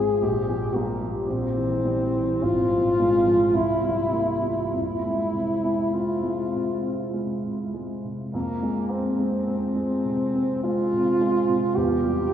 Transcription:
0.00 0.18 G#1 soft
0.00 0.24 F3 soft
0.00 0.23 G#3 soft
0.00 0.24 C4 soft
0.00 0.23 G#4 medium
0.22 1.25 A#1 soft
0.22 0.77 G4 medium
0.49 0.91 F3 soft
0.75 1.18 G3 soft
0.75 1.09 A#3 medium
1.02 1.28 F3 soft
1.27 2.39 A#1 soft
1.27 2.44 C4 medium
1.56 2.02 E3 soft
1.85 2.31 G3 soft
2.14 2.42 E3 soft
2.43 3.52 G#1 soft
2.43 3.56 F4 medium
2.72 3.16 F3 soft
2.99 3.44 G#3 soft
3.26 3.54 F3 soft
3.54 4.69 C2 soft
3.54 4.71 E4 medium
3.83 4.30 G3 soft
4.12 4.60 A#3 soft
4.42 4.72 G3 soft
4.71 8.31 F2 soft
4.71 5.95 E4 medium
5.03 5.52 G#3 soft
5.33 5.82 C3 soft
5.64 6.12 G#3 soft
5.94 6.42 C4 soft
5.94 7.14 F4 soft
6.23 6.72 G#3 soft
6.54 7.02 C3 soft
6.83 7.32 C4 soft
7.14 7.62 G#3 soft
7.44 7.93 C3 soft
7.74 8.22 G#3 soft
8.04 8.34 C3 soft
8.33 11.73 F2 soft
8.33 8.91 A#3 medium
8.63 9.08 G#3 soft
8.90 10.63 C4 soft
8.90 9.36 C4 soft
9.19 9.64 G#3 soft
9.47 9.93 C4 soft
9.76 10.23 G#3 soft
10.05 10.53 C3 soft
10.35 10.82 C4 soft
10.63 11.11 G#3 soft
10.63 11.77 F4 medium
10.93 11.38 C3 soft
11.21 11.65 G#3 soft
11.49 11.77 C3 soft
11.75 12.33 E2 soft
11.75 12.33 G4 medium
12.04 12.33 G3 soft

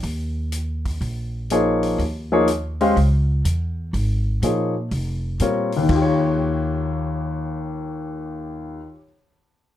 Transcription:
0.03 0.97 D#2 medium
0.03 open hi-hat soft
0.52 closed hi-hat medium
0.85 kick soft
0.85 open hi-hat soft
1.01 1.94 A#1 medium
1.01 open hi-hat soft
1.50 1.99 F3 medium
1.50 1.99 A#3 medium
1.50 1.99 D#4 medium
1.50 2.00 G#4 medium
1.50 2.00 C#5 medium
1.50 closed hi-hat medium
1.83 open hi-hat soft
1.98 2.92 D#2 medium
1.98 open hi-hat soft
2.32 2.46 F3 medium
2.32 2.46 A#3 medium
2.32 2.46 D#4 medium
2.32 2.46 G#4 medium
2.32 2.47 C#5 medium
2.48 closed hi-hat soft
2.81 2.95 G#3 medium
2.81 2.95 C#4 medium
2.81 2.95 G4 medium
2.81 2.95 C5 medium
2.81 2.95 F5 medium
2.81 open hi-hat soft
2.96 3.42 C#2 medium
2.96 open hi-hat soft
3.45 3.90 E2 medium
3.45 closed hi-hat medium
3.93 4.39 G#1 medium
3.93 open hi-hat soft
4.42 4.88 A#2 medium
4.42 4.72 F3 soft
4.42 4.73 A#3 soft
4.42 4.73 D#4 soft
4.42 4.73 G#4 soft
4.42 4.73 C#5 soft
4.42 closed hi-hat medium
4.91 5.37 F1 medium
4.91 open hi-hat soft
5.40 5.86 A#2 medium
5.40 5.70 G3 soft
5.40 5.70 C4 soft
5.40 5.71 F4 soft
5.40 5.71 A#4 soft
5.40 5.71 C#5 medium
5.40 closed hi-hat soft
5.72 open hi-hat soft
5.77 8.78 D#2 medium
5.83 8.85 D#3 medium
5.89 8.86 D#2 medium
5.89 8.91 F4 soft
5.89 kick medium
5.89 crash medium
5.95 8.97 G4 medium
6.02 9.03 C#5 medium

